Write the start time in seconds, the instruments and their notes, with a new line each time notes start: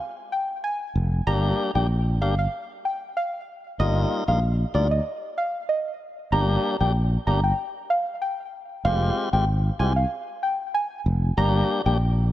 0.32 synth pluck G5
0.64 synth pluck G#5
0.96 fretless electric bass F1
1.27 fretless electric bass G1, tonewheel organ G3 A#3 D4 G4, synth pluck A#5
1.75 fretless electric bass A#1, tonewheel organ G3 A#3 D4 G4, synth pluck G5
2.22 fretless electric bass G1, tonewheel organ G3 A#3 D4 G4, synth pluck F5
2.39 synth pluck F5
2.85 synth pluck G5
3.17 synth pluck F5
3.79 fretless electric bass G1, tonewheel organ G3 A#3 D#4 F4, synth pluck D#5
4.28 fretless electric bass A#1, tonewheel organ G3 A#3 D#4 F4, synth pluck F5
4.74 fretless electric bass D2, tonewheel organ G3 A#3 D#4 F4, synth pluck D5
4.91 synth pluck D#5
5.38 synth pluck F5
5.69 synth pluck D#5
6.32 fretless electric bass G1, tonewheel organ G3 A#3 D4 G4, synth pluck A#5
6.81 fretless electric bass A#1, tonewheel organ G3 A#3 D4 G4, synth pluck G5
7.27 fretless electric bass G1, tonewheel organ G3 A#3 D4 G4, synth pluck A#5
7.44 synth pluck G5
7.90 synth pluck F5
8.22 synth pluck G5
8.85 fretless electric bass F1, tonewheel organ G#3 C4 F4 G4, synth pluck F5
9.33 fretless electric bass G#1, tonewheel organ G#3 C4 F4 G4, synth pluck G5
9.79 fretless electric bass C2, tonewheel organ G#3 C4 F4 G4, synth pluck G#5
9.96 synth pluck F5
10.43 synth pluck G5
10.74 synth pluck G#5
11.06 fretless electric bass F1
11.37 fretless electric bass G1, tonewheel organ G3 A#3 D4 G4, synth pluck A#5
11.86 fretless electric bass A#1, tonewheel organ G3 A#3 D4 G4, synth pluck G5